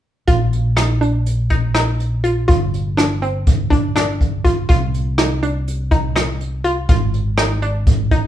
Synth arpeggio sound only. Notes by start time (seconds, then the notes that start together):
0.28 F4
0.77 D#4
1.01 D4
1.50 D#4
1.74 D#4
2.24 F4
2.48 F4
2.97 D4
3.22 C4
3.70 D4
3.96 D4
4.44 F4
4.69 F4
5.18 D#4
5.43 D4
5.91 D#4
6.16 D#4
6.64 F4
6.89 F4
7.38 D#4
7.62 D4
8.11 D#4